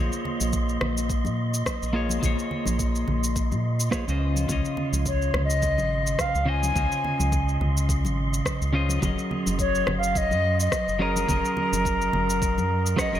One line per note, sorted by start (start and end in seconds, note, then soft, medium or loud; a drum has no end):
0.00 1.90 A#3 medium
0.00 1.91 F4 medium
0.00 1.92 G#4 medium
0.00 1.92 C5 medium
0.00 1.93 C#5 medium
0.00 13.20 D#5 medium
0.00 13.20 C6 medium
0.12 cabasa soft
0.25 low conga medium
0.41 0.78 A#1 loud
0.41 high conga loud
0.41 cabasa medium
0.53 kick medium
0.53 cabasa medium
0.69 cabasa soft
0.81 1.27 A#1 medium
0.81 cross-stick medium
0.81 high conga medium
0.81 low conga medium
0.98 cabasa medium
1.10 kick loud
1.10 cabasa medium
1.25 1.63 A#2 medium
1.25 high conga loud
1.25 cabasa soft
1.54 cabasa medium
1.66 kick loud
1.66 cross-stick medium
1.66 high conga medium
1.66 cabasa medium
1.82 2.20 A#1 medium
1.82 cabasa soft
1.93 2.18 A#3 medium
1.93 2.20 F4 medium
1.93 2.20 G#4 medium
1.93 2.21 C#5 loud
2.09 high conga medium
2.09 cabasa medium
2.20 2.36 A#1 loud
2.20 3.89 A#3 medium
2.20 3.89 F4 medium
2.20 3.90 G#4 medium
2.20 kick loud
2.20 low conga medium
2.20 cabasa medium
2.24 3.91 C5 medium
2.24 3.92 C#5 medium
2.39 cabasa soft
2.51 low conga medium
2.66 3.04 A#1 medium
2.66 high conga loud
2.66 cabasa medium
2.79 kick medium
2.79 cabasa medium
2.95 cabasa soft
3.08 3.53 A#1 medium
3.08 low conga medium
3.24 cabasa medium
3.36 kick loud
3.36 cabasa medium
3.52 3.90 A#2 medium
3.52 high conga medium
3.52 cabasa soft
3.80 cabasa medium
3.91 4.04 A#3 medium
3.91 4.04 F4 medium
3.91 4.05 G#4 medium
3.91 4.05 C5 medium
3.91 4.05 C#5 loud
3.91 kick loud
3.91 cross-stick medium
3.91 high conga medium
3.91 cabasa medium
4.07 4.46 C#2 medium
4.07 4.46 C#3 medium
4.07 4.46 C#4 medium
4.07 4.46 F4 medium
4.07 4.47 C5 medium
4.07 4.47 D#5 loud
4.07 cabasa soft
4.37 high conga medium
4.37 cabasa medium
4.47 4.62 C#2 medium
4.47 6.43 C#3 medium
4.47 6.44 C#4 medium
4.47 6.45 F4 medium
4.47 kick loud
4.47 low conga medium
4.47 cabasa medium
4.51 6.45 C#5 medium
4.51 6.46 D#5 medium
4.65 cabasa soft
4.77 low conga medium
4.93 5.31 C#2 loud
4.93 high conga medium
4.93 cabasa medium
5.06 5.42 C#5 medium
5.06 kick medium
5.06 cabasa medium
5.22 cabasa soft
5.34 5.80 C#2 medium
5.34 cross-stick medium
5.34 high conga medium
5.34 low conga medium
5.45 6.22 D#5 loud
5.50 cabasa medium
5.62 kick medium
5.62 cabasa medium
5.78 6.16 G#1 medium
5.78 high conga medium
5.78 cabasa soft
6.07 cabasa medium
6.19 6.50 F5 medium
6.19 kick loud
6.19 cross-stick medium
6.19 high conga medium
6.19 cabasa medium
6.35 6.72 C#2 medium
6.35 cabasa soft
6.45 6.71 C#3 medium
6.45 6.72 C#4 medium
6.45 6.73 F4 medium
6.45 6.73 C5 medium
6.45 6.73 D#5 loud
6.45 7.61 G#5 loud
6.63 high conga medium
6.63 cabasa medium
6.72 6.89 C#2 loud
6.72 8.69 C#3 medium
6.72 8.70 C#4 medium
6.72 8.71 F4 medium
6.72 kick loud
6.72 low conga medium
6.72 cabasa medium
6.77 8.71 C5 medium
6.77 8.72 D#5 medium
6.92 cabasa soft
7.04 low conga medium
7.20 7.58 C#2 loud
7.20 high conga medium
7.20 cabasa medium
7.32 kick medium
7.32 cabasa medium
7.49 cabasa soft
7.61 8.06 C#2 medium
7.61 low conga medium
7.77 cabasa medium
7.89 kick loud
7.89 cabasa medium
8.05 8.42 G#1 loud
8.05 high conga medium
8.05 cabasa soft
8.34 cabasa medium
8.46 kick medium
8.46 cross-stick medium
8.46 high conga medium
8.46 cabasa soft
8.61 8.99 C#2 medium
8.61 cabasa soft
8.73 8.99 C#3 medium
8.73 8.99 C#4 medium
8.73 8.99 F4 medium
8.73 9.00 C5 medium
8.73 9.00 D#5 loud
8.89 high conga medium
8.89 cabasa medium
8.99 9.15 F#1 loud
8.99 10.96 F#3 medium
8.99 10.97 C#4 medium
8.99 10.97 G#4 medium
8.99 kick loud
8.99 low conga loud
8.99 cabasa soft
9.03 10.98 A#4 medium
9.03 10.99 D#5 medium
9.19 cabasa soft
9.31 low conga medium
9.47 9.84 F#1 medium
9.47 high conga medium
9.47 cabasa medium
9.59 9.94 C#5 loud
9.59 kick medium
9.59 cabasa soft
9.75 cabasa soft
9.87 10.33 F#1 medium
9.87 cross-stick medium
9.87 high conga medium
9.87 low conga medium
9.98 10.18 F5 loud
10.03 cabasa medium
10.15 10.60 D#5 loud
10.15 kick medium
10.15 cabasa soft
10.31 10.69 F#2 medium
10.31 high conga medium
10.31 cabasa soft
10.60 11.03 D#5 loud
10.60 cabasa medium
10.72 kick medium
10.72 cross-stick medium
10.72 high conga medium
10.72 cabasa soft
10.88 11.25 F#1 medium
10.88 cabasa soft
10.99 11.25 F#3 medium
10.99 11.25 C#4 medium
10.99 11.26 G#4 medium
10.99 11.26 A#4 medium
10.99 12.99 A#4 loud
10.99 11.26 D#5 loud
11.16 high conga medium
11.16 cabasa medium
11.26 11.42 F#1 loud
11.26 12.95 F#3 medium
11.26 12.95 C#4 medium
11.26 12.96 G#4 medium
11.26 kick loud
11.26 low conga medium
11.26 cabasa medium
11.30 12.97 A#4 medium
11.30 12.97 D#5 medium
11.45 cabasa soft
11.57 low conga medium
11.72 12.10 F#1 loud
11.72 high conga medium
11.72 cabasa medium
11.85 kick medium
11.85 cabasa medium
12.02 cabasa soft
12.13 12.59 F#1 medium
12.13 low conga medium
12.30 cabasa medium
12.42 kick loud
12.42 cabasa medium
12.57 12.95 F#2 medium
12.57 high conga medium
12.57 cabasa soft
12.86 cabasa medium
12.96 13.09 F#3 loud
12.96 13.10 C#4 medium
12.96 13.10 G#4 medium
12.96 13.11 A#4 medium
12.96 13.20 D#5 medium
12.96 13.11 F#5 loud
12.96 kick loud
12.96 cross-stick medium
12.96 high conga medium
12.96 cabasa soft
13.12 13.20 F#1 medium
13.12 13.20 F#3 loud
13.12 13.20 C#4 medium
13.12 13.20 G#4 medium
13.12 13.20 A#4 medium
13.12 13.20 D#5 loud
13.12 cabasa soft